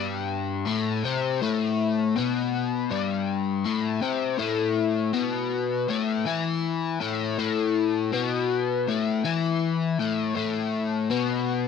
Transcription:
Already playing: G2 G3
0.66 A2 A3
1.04 C3 C4
1.42 A2 A3
2.16 B2 B3
2.90 G2 G3
3.65 A2 A3
4.02 C3 C4
4.38 A2 A3
5.13 B2 B3
5.89 A2 A3
6.25 E3 E4
7.00 A2 A3
7.38 A2 A3
8.13 B2 B3
8.88 A2 A3
9.25 E3 E4
9.99 A2 A3
10.35 A2 A3
11.10 B2 B3

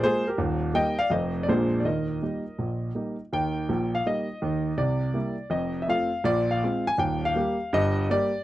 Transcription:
0.02 G#3 A#3 F4 G#4 C5
0.27 G4 A#4
0.38 D#1 D#2
0.74 G3 A#3 D#4 D#5 G5
0.99 D5 F5
1.10 F1 F2 F3 A3 C4 C5 D#5
1.43 D5
1.48 A#1 A#2 G#3 A#3 D4 G#4 C5
1.80 D5
1.85 D#2 D#3 A#4 D#5
2.22 G3 A#3 D#4
2.59 A#1 A#2
2.95 G3 A#3 D#4
3.33 D#2 D#3 G5
3.69 A#1 A#2
3.95 F5
4.06 G3 A#3 D#4 D#5
4.42 D#2 D#3
4.77 C2 C3 D5
5.14 G3 A#3 E4
5.50 F1 F2 D#5
5.82 E5
5.88 A3 C4 F4 F5
6.24 A#1 A#2 D5
6.51 F5
6.63 G#3 C4 F4
6.87 G#5
6.98 D#1 D#2 G5
7.25 F5
7.35 G3 A#3 G4
7.73 G1 G2 D#5
8.10 G3 A#3 G4 D5

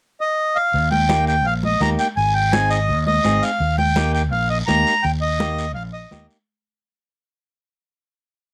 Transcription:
0.21 D#5
0.56 F5
0.73 D#2, high conga, long guiro
0.91 G5, high conga
1.09 A#3 D#4 G4, high conga, short guiro
1.27 G5, short guiro
1.45 A#1 F5, high conga, long guiro
1.63 D#5, high conga
1.80 D#2 A#3 D#4 G4 A#5, high conga, short guiro
1.99 G5, short guiro
2.17 G#1 G#5, high conga, long guiro
2.34 G5
2.52 C4 D#4 G#4 G#5, high conga, short guiro
2.70 D#5, short guiro
2.88 D#2, high conga, long guiro
3.07 D#5, high conga
3.24 G#1 C4 D#4 G#4, high conga, short guiro
3.43 F5, short guiro
3.60 D#2, high conga, long guiro
3.78 G5, high conga
3.96 A#3 D#4 G4, high conga, short guiro
4.14 G5, short guiro
4.32 A#1 F5, high conga, long guiro
4.50 D#5
4.67 D#2 A#3 D#4 G4 A#5, high conga, short guiro
4.87 short guiro
5.03 D#2 G5, high conga, long guiro
5.22 D#5
5.40 A#3 D#4 G4, high conga, short guiro
5.58 short guiro
5.75 A#1 F5, high conga, long guiro
5.93 D#5
6.11 D#2 A#3 D#4 G4, high conga, short guiro
6.30 short guiro

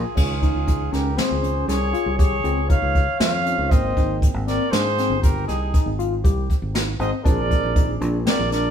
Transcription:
Already playing: D#4 F4 G#4 A#4 D5
0.15 C#2 C#4 D#4 F4, kick, crash
0.42 D#4, kick, closed hi-hat
0.55 C#2
0.67 D#4, kick, closed hi-hat
0.92 C#2 C#4 G4 A#4, snare, closed hi-hat
1.17 C4 G#4 C5, snare, closed hi-hat
1.31 C#2
1.43 C#4, closed hi-hat
1.68 C2 G#4 C#5, snare, closed hi-hat
1.93 F4, closed hi-hat
2.06 C2
2.18 G4 G#4 C#5, kick, closed hi-hat
2.44 C#2 C4, closed hi-hat
2.69 D#4 C#5 F5, kick, closed hi-hat
2.82 C#2
2.95 kick, closed hi-hat
3.20 F2 F4 C#5 F5, snare, closed hi-hat
3.45 C4 C#4 D#4 F4, closed hi-hat
3.58 C#2
3.70 G#1 A#3 C4 C5 D#5 G5, kick, closed hi-hat
3.97 G#1 D#4, kick, closed hi-hat
4.22 kick, closed hi-hat
4.34 G#1
4.47 C4 A#4 D5, snare, closed hi-hat
4.71 G#2 D4 G#4 C5, snare, closed hi-hat
4.98 C4, snare, closed hi-hat
5.10 G1
5.22 G4 A#4, kick, closed hi-hat
5.47 C2 D#4 G#4, snare, closed hi-hat
5.74 D#4, kick, closed hi-hat
5.86 G#1
5.99 F4, closed hi-hat
6.24 C2 G4, kick, closed hi-hat
6.50 kick, closed hi-hat
6.62 G#1
6.74 D#4, snare, closed hi-hat
6.99 G#1 C4 C5 D#5, closed hi-hat
7.24 A#1 C4 D4 G#4 A#4 D5, kick, closed hi-hat
7.50 D#4, kick, closed hi-hat
7.63 A#1
7.76 D#4, kick, closed hi-hat
8.01 A#1 D4, closed hi-hat
8.26 C4 A#4 D5, snare, closed hi-hat
8.39 A#1
8.51 D4 A#4 D5, snare, closed hi-hat

